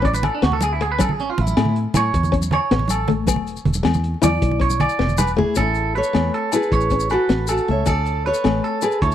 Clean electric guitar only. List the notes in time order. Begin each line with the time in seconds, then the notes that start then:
0.05 D5
0.14 B4
0.24 A4
0.35 D4
0.43 F#4
0.53 A4
0.64 G#4
0.72 E4
0.82 G#4
0.92 B4
1.01 A4
1.11 G#4
1.20 C#4
1.30 F4
1.41 E4
1.97 C#5
2.53 C#5
2.91 A4
4.24 D5
4.61 C#5
4.81 D5
5.18 B4
5.57 A4
5.95 B4
6.34 A4
6.73 C#5
7.11 B4
7.49 A4
7.87 A4
8.26 B4
8.64 A4
9.02 C#5